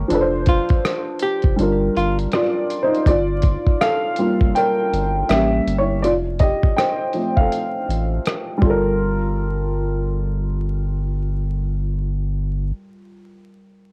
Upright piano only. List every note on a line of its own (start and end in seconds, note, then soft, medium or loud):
0.00 0.12 A3 medium
0.00 0.10 G4 medium
0.00 0.11 A#4 medium
0.00 0.12 C#5 medium
0.08 1.54 F3 medium
0.08 1.55 D4 medium
0.12 1.56 A4 medium
0.12 0.20 B4 medium
0.21 1.61 C5 medium
1.56 3.02 G3 medium
1.56 3.03 D4 medium
1.60 2.33 F4 medium
1.60 3.06 A#4 medium
2.34 2.80 F4 medium
2.34 2.84 D5 medium
2.83 3.06 D#4 medium
2.83 3.08 C5 medium
3.07 3.78 F4 medium
3.07 3.83 D5 medium
3.81 4.52 A4 medium
3.81 4.57 F5 medium
4.18 5.25 G3 medium
4.18 5.25 A#3 soft
4.18 5.26 F4 medium
4.55 5.26 A#4 medium
4.55 5.31 G5 loud
5.29 6.00 G3 medium
5.29 6.00 A#3 soft
5.29 6.00 C#4 medium
5.29 5.76 G4 medium
5.29 5.80 E5 medium
5.78 6.02 E4 medium
5.78 6.04 C#5 medium
6.02 6.13 F4 medium
6.02 6.11 D5 medium
6.40 6.75 G4 medium
6.40 6.78 D#5 medium
6.76 7.34 C5 medium
6.76 7.38 G5 medium
7.14 7.67 F3 medium
7.14 7.67 A3 soft
7.14 7.67 C4 medium
7.37 8.22 A4 medium
7.37 8.21 F5 medium
8.58 12.72 G3 medium
8.62 12.76 F4 medium
8.62 12.80 A4 medium
8.70 12.84 A#4 medium